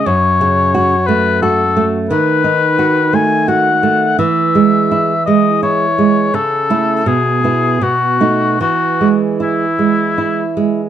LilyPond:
<<
  \new Staff \with { instrumentName = "Oboe" } { \time 3/4 \key e \major \tempo 4 = 84 cis''4. b'8 a'8 r8 | b'4. gis''8 fis''4 | e''4. dis''8 cis''4 | a'4 gis'4 fis'4 |
fis'8 r8 e'4. r8 | }
  \new Staff \with { instrumentName = "Nylon-string guitar" } { \time 3/4 \key e \major fis,8 cis8 fis'8 a8 fis'8 a8 | dis8 dis'8 fis'8 a8 fis'8 a8 | e8 gis8 e'8 gis8 e'8 gis8 | cis8 <a e'>8 b,8 <b e'>8 b,8 <a dis'>8 |
e8 gis8 e'8 gis8 e'8 gis8 | }
>>